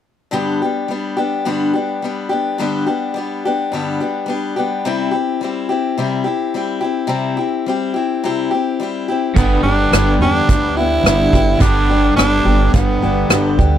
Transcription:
0.31 steel-string acoustic guitar G2 D3 G3 B3 D4 G4
0.62 steel-string acoustic guitar G3 B3 D4 G4
0.88 steel-string acoustic guitar G3 B3 D4 G4
1.17 steel-string acoustic guitar G3 B3 D4 G4
1.45 steel-string acoustic guitar G2 D3 G3 B3 D4 G4
1.74 steel-string acoustic guitar G3 B3 D4 G4
2.02 steel-string acoustic guitar G3 B3 D4 G4
2.29 steel-string acoustic guitar G3 B3 D4 G4
2.58 steel-string acoustic guitar G2 D3 G3 B3 D4 G4
2.86 steel-string acoustic guitar G3 B3 D4 G4
3.14 steel-string acoustic guitar G3 B3 D4 G4
3.45 steel-string acoustic guitar G3 B3 D4 G4
3.72 steel-string acoustic guitar G2 D3 G3 B3 D4 G4
4.00 steel-string acoustic guitar G3 B3 D4 G4
4.26 steel-string acoustic guitar G3 B3 D4 G4
4.56 steel-string acoustic guitar G3 B3 D4 G4
4.85 steel-string acoustic guitar C3 G3 C4 E4 G4
5.11 steel-string acoustic guitar C4 E4 G4
5.41 steel-string acoustic guitar G3 C4 E4 G4
5.69 steel-string acoustic guitar C4 E4 G4
5.98 steel-string acoustic guitar C3 G3 C4 E4 G4
6.24 steel-string acoustic guitar C4 E4 G4
6.54 steel-string acoustic guitar G3 C4 E4 G4
6.81 steel-string acoustic guitar C4 E4 G4
7.07 steel-string acoustic guitar C3 G3 C4 E4 G4
7.37 steel-string acoustic guitar C4 E4 G4
7.66 steel-string acoustic guitar G3 C4 E4 G4
7.94 steel-string acoustic guitar C4 E4 G4
8.24 steel-string acoustic guitar C3 G3 C4 E4 G4
8.51 steel-string acoustic guitar C4 E4 G4
8.80 steel-string acoustic guitar G3 C4 E4 G4
9.08 steel-string acoustic guitar C4 E4 G4
9.36 upright bass G1, steel-string acoustic guitar G2 D3 G3 B3 D4, tenor saxophone B3, kick, closed hi-hat
9.40 steel-string acoustic guitar G4
9.63 upright bass G1, tenor saxophone D4, steel-string acoustic guitar G4
9.67 steel-string acoustic guitar G3 B3 D4
9.92 upright bass G1, steel-string acoustic guitar G2 D3 G3 B3 D4 G4, cross-stick, closed hi-hat
10.19 upright bass E2, tenor saxophone D4, steel-string acoustic guitar D4 G4
10.23 steel-string acoustic guitar G3 B3
10.49 upright bass D2, steel-string acoustic guitar G3 B3 D4, kick, closed hi-hat
10.53 steel-string acoustic guitar G4
10.77 steel-string acoustic guitar G3 B3 D4 G4, tenor saxophone E4
11.04 upright bass G1, steel-string acoustic guitar G2 D3 G3 D4, cross-stick, closed hi-hat
11.08 steel-string acoustic guitar B3 G4
11.33 upright bass G1, steel-string acoustic guitar B3 D4 G4, kick
11.37 steel-string acoustic guitar G3
11.60 upright bass G1, steel-string acoustic guitar G2 D3 G3 B3 D4 G4, tenor saxophone D4, kick, closed hi-hat
11.89 steel-string acoustic guitar G3 B3 D4 G4
12.16 upright bass G1, steel-string acoustic guitar G2 D3 G3 B3 D4 G4, tenor saxophone D4, cross-stick, closed hi-hat
12.45 upright bass G1, steel-string acoustic guitar G3 B3 D4 G4
12.73 upright bass G1, steel-string acoustic guitar G3 B3 D4 G4, tenor saxophone B3, kick, closed hi-hat
13.02 upright bass G1, steel-string acoustic guitar G3 B3 D4 G4
13.30 upright bass G1, steel-string acoustic guitar G2 D3 G3 B3 D4 G4, cross-stick, closed hi-hat
13.58 upright bass D2, steel-string acoustic guitar G3 B3 D4 G4, kick

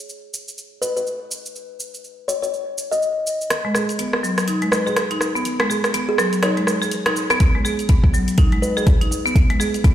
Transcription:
0.09 shaker
0.34 shaker
0.48 shaker
0.58 shaker
0.82 kalimba B4, shaker
0.97 kalimba B4, shaker
1.07 shaker
1.31 shaker
1.46 shaker
1.56 shaker
1.80 shaker
1.94 shaker
2.04 shaker
2.28 kalimba C#5, shaker
2.42 kalimba C#5, shaker
2.54 shaker
2.78 shaker
2.91 kalimba D#5, shaker
3.02 shaker
3.27 shaker
3.41 shaker
3.50 cross-stick, closed hi-hat, mid tom, shaker
3.65 marimba G#3
3.75 marimba G#4, cross-stick, mid tom, shaker
3.89 closed hi-hat, shaker
3.99 marimba B3, closed hi-hat, mid tom, shaker
4.13 cross-stick
4.23 marimba F#3, shaker
4.38 cross-stick, closed hi-hat, shaker
4.48 marimba D#4, closed hi-hat, mid tom, shaker
4.62 marimba G#3, closed hi-hat
4.72 kalimba B4, cross-stick, shaker
4.86 marimba G#4, kalimba B4, mid tom, shaker
4.96 cross-stick, closed hi-hat, mid tom, shaker
5.11 marimba D#4, closed hi-hat
5.21 cross-stick, shaker
5.35 marimba B3, shaker
5.45 closed hi-hat, mid tom, shaker
5.60 marimba G#3, cross-stick, closed hi-hat
5.70 marimba G#4, mid tom, shaker
5.84 cross-stick, closed hi-hat, shaker
5.94 marimba B3, closed hi-hat, mid tom, shaker
6.09 kalimba G#4
6.18 marimba F#3, cross-stick, shaker
6.33 closed hi-hat, shaker
6.43 marimba D#4, kalimba C#5, cross-stick, closed hi-hat, mid tom, shaker
6.57 marimba G#3, closed hi-hat
6.67 cross-stick, shaker
6.82 marimba G#4, shaker
6.91 closed hi-hat, mid tom, shaker
7.06 marimba D#4, cross-stick, closed hi-hat, mid tom
7.16 shaker
7.30 marimba B3, cross-stick, closed hi-hat, shaker
7.40 kick, closed hi-hat, mid tom, shaker
7.55 marimba G#3
7.65 marimba G#4, mid tom, shaker
7.79 closed hi-hat, shaker
7.89 marimba B3, kick, closed hi-hat, mid tom, shaker
8.04 kick
8.13 marimba F#3, mid tom, shaker
8.28 closed hi-hat, shaker
8.38 marimba D#4, kick, closed hi-hat, mid tom, shaker
8.52 marimba G#3, closed hi-hat
8.62 kalimba B4, mid tom, shaker
8.77 marimba G#4, kalimba B4, mid tom, shaker
8.87 kick, closed hi-hat, mid tom, shaker
9.01 marimba D#4, closed hi-hat
9.11 mid tom, shaker
9.26 marimba B3, shaker
9.36 kick, closed hi-hat, mid tom, shaker
9.50 marimba G#3, closed hi-hat, mid tom
9.60 marimba G#4, mid tom, shaker
9.74 closed hi-hat, mid tom, shaker
9.84 marimba B3, kick, closed hi-hat, mid tom, shaker

